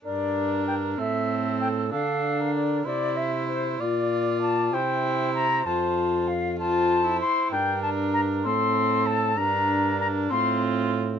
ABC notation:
X:1
M:6/8
L:1/16
Q:3/8=64
K:Gdor
V:1 name="Flute"
d4 g2 e4 g2 | f4 d2 d2 e2 c2 | d4 a2 g4 b2 | a4 f2 a4 c'2 |
g2 a2 b2 c'4 a2 | b4 b2 c'2 z4 |]
V:2 name="Cor anglais"
B6 A6 | A3 B3 c6 | d6 c6 | c4 z2 c6 |
B6 A6 | B6 F6 |]
V:3 name="Viola"
D6 C6 | D6 E6 | F6 E6 | F6 F3 E3 |
D6 C6 | D6 C6 |]
V:4 name="Trombone" clef=bass
G,,6 A,,6 | D,6 C,6 | B,,6 C,6 | F,,8- F,,2 z2 |
G,,6 A,,6 | G,,6 A,,6 |]